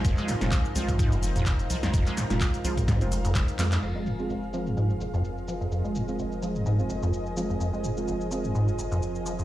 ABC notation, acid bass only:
X:1
M:4/4
L:1/16
Q:"Swing 16ths" 1/4=127
K:Fm
V:1 name="Acid bass" clef=bass
F,, A, F,, z F,,, z F, F,, A,, F,, F,,, F,, z2 F, F,, | F,, A, F,, z F,,, z F, F,, A,, F,, F,,, F,, z2 F, F,, | F,, A, F,, z F,,, z F, F,, A,, F,, F,,, F,, z2 F, F,, | F,, A, F,, z F,,, z F, F,, A,, F,, F,,, F,, z2 F, F,, |
F,, A, F,, z F,,, z F, F,, A,, F,, F,,, F,, z2 F, F,, |]